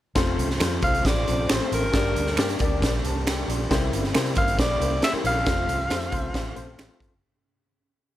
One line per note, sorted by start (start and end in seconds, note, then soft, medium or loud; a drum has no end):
0.15 0.35 F1 loud
0.15 1.93 F3 medium
0.15 0.46 A3 medium
0.15 1.93 A3 medium
0.15 0.46 C4 medium
0.15 1.93 C4 medium
0.15 0.46 F4 medium
0.15 1.93 F4 medium
0.15 0.47 C5 medium
0.15 kick loud
0.15 snare loud
0.15 closed hi-hat medium
0.38 0.58 C2 medium
0.38 closed hi-hat medium
0.50 snare soft
0.60 0.80 F2 medium
0.60 0.76 A3 medium
0.60 0.76 C4 medium
0.60 0.76 F4 medium
0.60 0.76 C5 medium
0.60 finger snap medium
0.60 snare loud
0.60 closed hi-hat medium
0.82 1.02 C2 medium
0.82 1.13 A3 medium
0.82 1.13 C4 medium
0.82 1.14 F4 medium
0.82 1.13 C5 medium
0.82 1.07 F5 medium
0.82 kick medium
0.82 closed hi-hat medium
0.94 closed hi-hat soft
1.05 1.24 A1 medium
1.05 1.53 D5 medium
1.05 kick medium
1.05 snare loud
1.05 closed hi-hat medium
1.27 1.48 A#1 medium
1.27 1.50 A3 medium
1.27 1.50 C4 medium
1.27 1.51 F4 medium
1.27 1.51 C5 medium
1.27 closed hi-hat medium
1.49 1.60 A1 medium
1.49 1.73 C5 medium
1.49 finger snap medium
1.49 snare loud
1.49 closed hi-hat medium
1.60 1.84 A3 medium
1.60 1.84 C4 medium
1.60 1.84 F4 medium
1.60 1.84 C5 medium
1.72 1.81 A1 medium
1.72 2.58 A#4 medium
1.72 closed hi-hat medium
1.83 1.92 G#1 medium
1.93 2.13 G1 loud
1.93 2.57 G2 medium
1.93 3.70 G3 medium
1.93 2.25 A#3 medium
1.93 5.43 A#3 medium
1.93 3.69 D4 medium
1.93 2.25 D4 medium
1.93 2.25 G4 medium
1.93 3.70 G4 medium
1.93 2.25 D5 medium
1.93 kick medium
1.93 snare loud
1.93 closed hi-hat medium
2.16 2.38 D2 medium
2.16 closed hi-hat medium
2.27 snare soft
2.37 2.57 G2 medium
2.37 2.53 A#3 medium
2.37 2.53 D4 medium
2.37 2.54 G4 medium
2.37 2.54 D5 medium
2.37 finger snap medium
2.37 snare loud
2.37 closed hi-hat medium
2.49 closed hi-hat medium
2.59 2.79 D2 medium
2.59 2.91 A#3 medium
2.59 2.91 D4 medium
2.59 2.91 G4 medium
2.59 2.92 D5 medium
2.59 kick medium
2.59 closed hi-hat medium
2.82 3.01 A#1 medium
2.82 kick medium
2.82 snare loud
2.82 closed hi-hat medium
3.04 3.43 C2 medium
3.04 3.26 C5 soft
3.04 3.26 A5 medium
3.04 closed hi-hat medium
3.27 3.49 A#4 medium
3.27 3.48 G5 medium
3.27 finger snap medium
3.27 snare loud
3.27 closed hi-hat medium
3.48 3.68 A#1 medium
3.48 3.91 F4 medium
3.48 3.91 D5 medium
3.48 closed hi-hat medium
3.70 3.90 C2 loud
3.70 4.33 C3 medium
3.70 5.45 G3 medium
3.70 4.01 A#3 medium
3.70 7.19 C4 medium
3.70 4.01 E4 medium
3.70 5.45 E4 medium
3.70 4.01 G4 medium
3.70 4.01 C5 loud
3.70 kick loud
3.70 snare loud
3.70 closed hi-hat medium
3.92 4.12 G1 medium
3.92 closed hi-hat medium
4.04 snare soft
4.14 4.34 C3 medium
4.14 4.30 A#3 medium
4.14 4.30 E4 medium
4.14 4.30 G4 medium
4.14 4.30 C5 medium
4.14 finger snap medium
4.14 snare loud
4.14 closed hi-hat medium
4.26 closed hi-hat soft
4.35 4.56 G1 medium
4.35 4.67 A#3 medium
4.35 4.67 E4 medium
4.35 4.67 G4 medium
4.35 4.67 C5 medium
4.35 4.58 F5 loud
4.35 kick loud
4.35 closed hi-hat medium
4.48 closed hi-hat medium
4.59 4.78 A#1 medium
4.59 5.00 D5 loud
4.59 kick medium
4.59 snare loud
4.59 closed hi-hat medium
4.80 4.99 C2 medium
4.80 5.03 A#3 medium
4.80 5.03 E4 medium
4.80 5.03 G4 medium
4.80 5.03 C5 medium
4.80 closed hi-hat medium
5.02 5.14 E5 medium
5.02 finger snap medium
5.02 snare medium
5.02 closed hi-hat medium
5.13 5.36 A#3 medium
5.13 5.36 E4 medium
5.13 5.36 G4 medium
5.13 5.36 C5 medium
5.13 muted fingered electric bass stroke soft
5.24 5.43 A#1 medium
5.24 6.96 F5 medium
5.24 closed hi-hat medium
5.46 5.65 F1 loud
5.46 7.20 F3 medium
5.46 5.77 A3 medium
5.46 7.20 A3 medium
5.46 5.77 C4 medium
5.46 5.77 F4 medium
5.46 7.20 F4 medium
5.46 5.77 C5 medium
5.46 kick loud
5.46 snare loud
5.46 closed hi-hat medium
5.68 5.87 C2 medium
5.68 closed hi-hat medium
5.90 6.09 F2 medium
5.90 6.05 A3 medium
5.90 6.05 C4 medium
5.90 6.06 F4 medium
5.90 6.05 C5 medium
5.90 finger snap medium
5.90 snare loud
5.90 closed hi-hat medium
6.01 closed hi-hat soft
6.12 6.31 C2 medium
6.12 6.42 A3 medium
6.12 6.42 C4 medium
6.12 6.42 F4 medium
6.12 6.42 C5 medium
6.12 kick medium
6.12 closed hi-hat medium
6.34 6.53 A1 medium
6.34 kick medium
6.34 snare loud
6.34 closed hi-hat medium
6.55 6.75 A#1 medium
6.55 6.78 A3 medium
6.55 6.78 C4 medium
6.55 6.79 F4 medium
6.55 6.78 C5 medium
6.55 closed hi-hat medium
6.79 6.88 A1 medium
6.79 finger snap medium
6.79 snare loud
6.79 closed hi-hat medium
6.88 7.11 A3 medium
6.88 7.11 C4 medium
6.88 7.11 F4 medium
6.88 7.12 C5 medium
7.00 7.09 G1 medium
7.00 kick medium
7.00 closed hi-hat medium
7.13 7.21 F#1 medium